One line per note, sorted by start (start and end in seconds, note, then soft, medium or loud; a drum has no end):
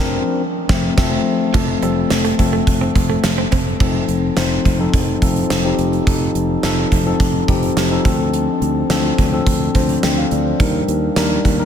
0.00 0.18 F1 loud
0.00 0.43 F3 loud
0.00 0.43 C4 medium
0.00 0.43 D4 loud
0.00 0.43 A#4 medium
0.69 0.89 F1 loud
0.69 0.88 F3 loud
0.69 0.88 A3 loud
0.69 0.89 C4 loud
0.69 kick loud
0.69 snare loud
0.97 1.17 F1 medium
0.97 1.17 F3 loud
0.97 1.17 A3 loud
0.97 1.17 C4 medium
0.97 1.17 A4 loud
0.97 kick loud
0.97 snare loud
0.97 crash medium
1.54 1.75 F1 medium
1.54 1.81 F3 medium
1.54 1.64 F3 medium
1.54 1.81 A3 medium
1.54 1.81 C4 medium
1.54 1.81 A4 medium
1.54 kick loud
1.54 crash medium
1.68 muted clean electric guitar stroke soft
1.82 2.03 F1 medium
1.82 2.35 F3 medium
1.82 1.92 G3 medium
1.82 2.36 A3 medium
1.82 2.36 C4 medium
1.82 2.36 A4 medium
1.82 closed hi-hat medium
2.10 2.31 F1 medium
2.10 snare loud
2.10 closed hi-hat medium
2.25 2.35 A3 medium
2.25 closed hi-hat soft
2.38 2.60 F1 medium
2.38 3.45 F3 medium
2.38 3.45 A3 medium
2.38 3.46 C4 medium
2.38 3.46 A4 medium
2.38 muted clean electric guitar stroke soft
2.38 kick medium
2.38 closed hi-hat medium
2.53 2.63 A3 medium
2.67 2.88 F1 loud
2.67 kick medium
2.67 closed hi-hat medium
2.81 2.91 C4 medium
2.95 3.16 F1 medium
2.95 muted clean electric guitar stroke soft
2.95 kick medium
2.95 closed hi-hat medium
3.10 3.20 A3 medium
3.24 3.44 F1 medium
3.24 muted clean electric guitar stroke soft
3.24 snare loud
3.24 closed hi-hat loud
3.38 3.48 C4 medium
3.52 3.73 F1 medium
3.52 3.62 C4 medium
3.52 kick medium
3.52 closed hi-hat medium
3.80 4.01 F1 medium
3.80 4.34 F3 medium
3.80 4.34 C4 medium
3.80 4.34 D#4 medium
3.80 4.34 A4 medium
3.80 kick loud
3.80 crash medium
4.09 4.29 F1 medium
4.09 closed hi-hat medium
4.37 4.57 F1 medium
4.37 4.77 F3 medium
4.37 4.77 C4 medium
4.37 4.77 D#4 medium
4.37 4.77 C5 medium
4.37 snare loud
4.37 closed hi-hat medium
4.65 4.86 F1 loud
4.65 kick medium
4.65 closed hi-hat medium
4.79 5.19 F3 medium
4.79 5.20 C4 medium
4.79 5.20 D#4 medium
4.79 5.20 A4 medium
4.94 5.14 F1 medium
4.94 kick medium
4.94 closed hi-hat medium
5.22 5.42 F1 medium
5.22 5.62 F3 medium
5.22 5.62 C4 medium
5.22 5.62 D#4 medium
5.22 5.62 A4 medium
5.22 kick medium
5.22 closed hi-hat medium
5.36 closed hi-hat soft
5.50 5.71 F1 medium
5.50 snare loud
5.50 closed hi-hat loud
5.64 6.04 F3 medium
5.64 6.04 C4 medium
5.64 6.05 D#4 medium
5.64 6.05 G4 medium
5.79 5.99 F1 medium
5.79 closed hi-hat medium
5.93 closed hi-hat soft
6.06 6.27 F1 medium
6.06 6.60 F3 medium
6.06 6.60 C4 medium
6.06 6.60 D#4 medium
6.06 6.61 A4 medium
6.06 kick loud
6.06 closed hi-hat medium
6.35 6.56 F1 medium
6.35 closed hi-hat medium
6.63 6.84 F1 loud
6.63 7.03 F3 medium
6.63 7.04 C4 medium
6.63 7.04 D#4 medium
6.63 7.04 A4 medium
6.63 snare loud
6.63 closed hi-hat medium
6.92 7.12 F1 medium
6.92 kick medium
6.92 closed hi-hat medium
7.06 7.46 F3 medium
7.06 7.46 C4 medium
7.06 7.46 D#4 medium
7.06 7.46 A4 medium
7.20 7.40 F1 medium
7.20 kick medium
7.20 closed hi-hat medium
7.48 7.69 F1 medium
7.48 7.88 F3 medium
7.48 7.89 C4 medium
7.48 7.89 D#4 medium
7.48 7.89 G4 medium
7.48 kick medium
7.48 closed hi-hat medium
7.63 closed hi-hat soft
7.77 7.97 F1 medium
7.77 snare loud
7.77 closed hi-hat loud
7.91 8.03 F3 medium
7.91 8.04 C4 medium
7.91 8.06 D#4 medium
7.91 8.05 A4 medium
8.04 8.46 D2 medium
8.04 8.85 F3 medium
8.04 8.85 C4 medium
8.04 8.85 D4 medium
8.04 8.85 A4 medium
8.04 kick loud
8.04 closed hi-hat medium
8.34 closed hi-hat medium
8.61 8.82 D2 medium
8.61 closed hi-hat medium
8.90 9.10 D2 medium
8.90 9.30 F3 medium
8.90 9.30 C4 medium
8.90 9.30 D4 medium
8.90 9.30 A4 medium
8.90 snare loud
8.90 closed hi-hat medium
9.18 9.39 D2 medium
9.18 kick medium
9.18 closed hi-hat medium
9.32 9.72 F3 medium
9.32 9.73 C4 medium
9.32 9.73 D4 medium
9.32 9.73 A4 medium
9.46 9.67 D2 medium
9.46 kick medium
9.46 closed hi-hat medium
9.75 9.95 D2 loud
9.75 10.15 F3 medium
9.75 10.15 C4 medium
9.75 10.15 D4 medium
9.75 10.04 C5 medium
9.75 kick medium
9.75 closed hi-hat medium
9.89 closed hi-hat soft
10.03 10.24 D2 medium
10.03 10.17 G5 medium
10.03 snare loud
10.03 closed hi-hat loud
10.18 10.31 F5 medium
10.31 10.52 D2 medium
10.31 10.45 D5 medium
10.31 closed hi-hat medium
10.46 10.73 C5 medium
10.60 10.80 D#2 loud
10.60 11.13 G3 medium
10.60 11.13 D4 medium
10.60 11.13 D#4 medium
10.60 11.14 A#4 medium
10.60 kick loud
10.60 closed hi-hat medium
10.88 11.08 D#2 medium
10.88 closed hi-hat medium
11.16 11.37 D#2 medium
11.16 11.23 F#3 medium
11.16 11.57 D4 medium
11.16 11.57 D#4 medium
11.16 11.57 A#4 medium
11.16 snare loud
11.16 closed hi-hat medium
11.23 11.58 G3 medium
11.45 11.65 D#2 medium
11.45 kick medium
11.45 closed hi-hat medium
11.59 11.65 G3 medium
11.59 11.65 D4 medium
11.59 11.65 D#4 medium
11.59 11.65 A#4 medium